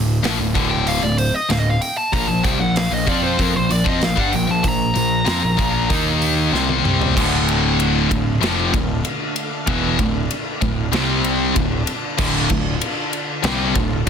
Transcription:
Already playing: picked electric bass D1, distorted electric guitar D2 A2
0.23 picked electric bass A#1, distorted electric guitar A#2 F3, snare, open hi-hat
0.39 picked electric bass D1, distorted electric guitar D2 A2
0.54 picked electric bass D1, distorted electric guitar D2 A2 D3, kick, open hi-hat
0.71 lead electric guitar G5
0.87 lead electric guitar F5, open hi-hat
1.02 picked electric bass D1, distorted electric guitar D2 A2, lead electric guitar D5
1.18 lead electric guitar C5, open hi-hat
1.34 lead electric guitar D#5
1.49 picked electric bass D1, distorted electric guitar D2 A2, lead electric guitar F5, snare, open hi-hat
1.59 lead electric guitar D#5
1.71 lead electric guitar F5
1.81 lead electric guitar G5, open hi-hat
1.97 lead electric guitar A5
2.13 picked electric bass A#1, distorted electric guitar A#2 F3, lead electric guitar A#5, kick, open hi-hat
2.28 picked electric bass A#1, distorted electric guitar A#2 F3, lead electric guitar A5
2.43 picked electric bass C2, distorted electric guitar C3 G3, lead electric guitar G5, kick, open hi-hat
2.60 picked electric bass A#1, distorted electric guitar A#2 F3, lead electric guitar F#5
2.76 lead electric guitar F5, snare, open hi-hat
2.91 picked electric bass A#1, distorted electric guitar A#2 F3, lead electric guitar D#5
3.06 picked electric bass F2, distorted electric guitar F3 C4 F4, lead electric guitar D5, kick, open hi-hat
3.23 lead electric guitar C5
3.37 picked electric bass F2, distorted electric guitar F3 C4, lead electric guitar A#4, kick, open hi-hat
3.54 picked electric bass A#1, distorted electric guitar A#2 F3, lead electric guitar C5
3.69 picked electric bass A#1, distorted electric guitar A#2 F3, lead electric guitar D5, open hi-hat
3.84 picked electric bass F2, distorted electric guitar F3 C4, kick
3.89 lead electric guitar D#5
4.00 picked electric bass A#1, distorted electric guitar A#2 F3, snare, open hi-hat
4.04 lead electric guitar F5
4.16 picked electric bass G2, distorted electric guitar G3 D4, kick
4.20 lead electric guitar F#5
4.32 picked electric bass A#1, distorted electric guitar A#2 F3, lead electric guitar G5, open hi-hat
4.47 picked electric bass A#1, distorted electric guitar A#2 F3
4.51 lead electric guitar A5
4.63 picked electric bass A#1, distorted electric guitar A#2 F3, kick, open hi-hat
4.67 lead electric guitar A#5
4.94 picked electric bass A#1, distorted electric guitar A#2 F3, open hi-hat
5.25 picked electric bass F2, distorted electric guitar F3 C4, snare, open hi-hat
5.41 picked electric bass A#1, distorted electric guitar A#2 F3
5.57 picked electric bass A#1, distorted electric guitar A#2 F3 A#3, kick, open hi-hat
5.89 picked electric bass D#2, distorted electric guitar D#3 A#3 D#4, kick, open hi-hat
6.22 open hi-hat
6.52 picked electric bass C2, distorted electric guitar C3 G3 C4, snare
6.69 high tom
6.84 picked electric bass C2, distorted electric guitar C3 G3 C4, mid tom
7.02 floor tom
7.16 picked electric bass D1, distorted electric guitar D2 A2 D3, analog synth pad D3 A3 D4 F5, kick, crash
7.49 ride
7.80 ride
8.10 picked electric bass D1, distorted electric guitar D2 A2, kick, ride
8.41 picked electric bass F1, distorted electric guitar F2 C3 F3, snare, ride
8.74 picked electric bass D1, distorted electric guitar D2 A2, kick, ride
9.05 ride
9.36 ride
9.67 picked electric bass E1, distorted electric guitar E2 B2 E3, kick, ride
9.99 picked electric bass D1, distorted electric guitar D2 A2, kick, ride
10.31 ride
10.61 picked electric bass D1, distorted electric guitar D2 A2, kick, ride
10.92 picked electric bass C2, distorted electric guitar C3 G3 C4, analog synth pad C3 G3 C5, snare, ride
11.24 ride
11.56 picked electric bass D1, distorted electric guitar D2 A2, analog synth pad D3 F4 A4, kick, ride
11.87 ride
12.18 picked electric bass D1, distorted electric guitar D2 A2 D3, kick, crash
12.49 picked electric bass D1, distorted electric guitar D2 A2, kick, ride
12.81 ride
13.13 ride
13.43 picked electric bass C2, distorted electric guitar C3 G3 C4, snare, ride
13.74 picked electric bass D1, distorted electric guitar D2 A2, kick, ride

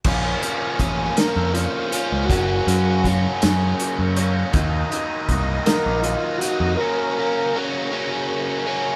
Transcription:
0.04 picked electric bass A#1, overdriven electric guitar A#2 F3 A#3 C#4, tonewheel organ A#4 C#5 F5 C#6, kick, crash
0.42 overdriven electric guitar F3 A#3 C#4, closed hi-hat
0.79 picked electric bass A1, overdriven electric guitar A#2 F3 A#3 C#4, kick, closed hi-hat
1.17 overdriven electric guitar A#2 F3 A#3 C#4, transistor combo organ A#4, snare, closed hi-hat
1.36 picked electric bass F2
1.54 transistor combo organ F4, closed hi-hat
1.89 transistor combo organ F4, closed hi-hat
1.93 overdriven electric guitar F3 A#3 C#4
2.12 picked electric bass C#2
2.25 transistor combo organ F#4
2.30 picked electric bass F#1, overdriven electric guitar F#2 C#3 F#3 A#3 C#4, tonewheel organ C#5 A#5 C#6, kick, closed hi-hat
2.67 picked electric bass F#2, overdriven electric guitar F#3 A#3 C#4, closed hi-hat
3.04 overdriven electric guitar C#3 F#3 A#3 C#4, kick, closed hi-hat
3.42 picked electric bass F#2, overdriven electric guitar F#2 C#3 F#3 A#3 C#4, snare, closed hi-hat
3.80 closed hi-hat
3.99 picked electric bass F#2
4.16 overdriven electric guitar F#3 A#3 C#4, closed hi-hat
4.52 picked electric bass D#2, overdriven electric guitar D#3 F#3 A#3 D#4, tonewheel organ A#4 D#5 D#6, kick, closed hi-hat
4.91 overdriven electric guitar F#3 A#3 D#4, closed hi-hat
5.29 picked electric bass C2, overdriven electric guitar D#3 F#3 A#3 D#4, kick, closed hi-hat
5.66 overdriven electric guitar D#3 F#3 A#3 D#4, transistor combo organ A#4, snare, closed hi-hat
5.86 picked electric bass A#1
6.02 transistor combo organ F4, closed hi-hat
6.38 overdriven electric guitar D#4, transistor combo organ F#4, closed hi-hat
6.43 overdriven electric guitar F#3 A#3
6.60 picked electric bass F2
6.77 overdriven electric guitar F#2, transistor combo organ A#4, tonewheel organ C#5 C#6
6.81 overdriven electric guitar C#3 F#3 A#3 C#4
7.18 overdriven electric guitar F#3 A#3 C#4
7.55 overdriven electric guitar C#3 F#3 A#3 C#4
7.91 overdriven electric guitar F#2 C#3 F#3 A#3 C#4
8.66 overdriven electric guitar F#3 A#3 C#4

